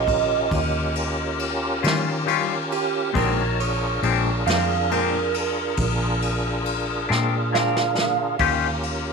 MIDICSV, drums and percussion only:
0, 0, Header, 1, 2, 480
1, 0, Start_track
1, 0, Tempo, 875912
1, 1725, Time_signature, 12, 3, 24, 8
1, 5003, End_track
2, 0, Start_track
2, 0, Title_t, "Drums"
2, 41, Note_on_c, 9, 36, 71
2, 42, Note_on_c, 9, 51, 55
2, 96, Note_off_c, 9, 36, 0
2, 97, Note_off_c, 9, 51, 0
2, 282, Note_on_c, 9, 36, 100
2, 282, Note_on_c, 9, 51, 71
2, 336, Note_off_c, 9, 51, 0
2, 337, Note_off_c, 9, 36, 0
2, 523, Note_on_c, 9, 51, 57
2, 578, Note_off_c, 9, 51, 0
2, 764, Note_on_c, 9, 51, 52
2, 819, Note_off_c, 9, 51, 0
2, 1009, Note_on_c, 9, 51, 72
2, 1023, Note_on_c, 9, 38, 97
2, 1064, Note_off_c, 9, 51, 0
2, 1078, Note_off_c, 9, 38, 0
2, 1249, Note_on_c, 9, 51, 56
2, 1304, Note_off_c, 9, 51, 0
2, 1490, Note_on_c, 9, 51, 53
2, 1544, Note_off_c, 9, 51, 0
2, 1728, Note_on_c, 9, 36, 104
2, 1731, Note_on_c, 9, 51, 75
2, 1783, Note_off_c, 9, 36, 0
2, 1786, Note_off_c, 9, 51, 0
2, 1973, Note_on_c, 9, 51, 59
2, 2028, Note_off_c, 9, 51, 0
2, 2209, Note_on_c, 9, 51, 54
2, 2264, Note_off_c, 9, 51, 0
2, 2451, Note_on_c, 9, 51, 81
2, 2465, Note_on_c, 9, 38, 101
2, 2506, Note_off_c, 9, 51, 0
2, 2520, Note_off_c, 9, 38, 0
2, 2693, Note_on_c, 9, 51, 60
2, 2748, Note_off_c, 9, 51, 0
2, 2927, Note_on_c, 9, 51, 62
2, 2982, Note_off_c, 9, 51, 0
2, 3163, Note_on_c, 9, 51, 78
2, 3167, Note_on_c, 9, 36, 96
2, 3218, Note_off_c, 9, 51, 0
2, 3221, Note_off_c, 9, 36, 0
2, 3409, Note_on_c, 9, 51, 60
2, 3464, Note_off_c, 9, 51, 0
2, 3648, Note_on_c, 9, 51, 56
2, 3703, Note_off_c, 9, 51, 0
2, 3901, Note_on_c, 9, 38, 54
2, 3956, Note_off_c, 9, 38, 0
2, 4137, Note_on_c, 9, 38, 72
2, 4191, Note_off_c, 9, 38, 0
2, 4255, Note_on_c, 9, 38, 63
2, 4310, Note_off_c, 9, 38, 0
2, 4375, Note_on_c, 9, 38, 88
2, 4430, Note_off_c, 9, 38, 0
2, 4598, Note_on_c, 9, 51, 67
2, 4601, Note_on_c, 9, 36, 94
2, 4652, Note_off_c, 9, 51, 0
2, 4656, Note_off_c, 9, 36, 0
2, 4840, Note_on_c, 9, 51, 52
2, 4894, Note_off_c, 9, 51, 0
2, 5003, End_track
0, 0, End_of_file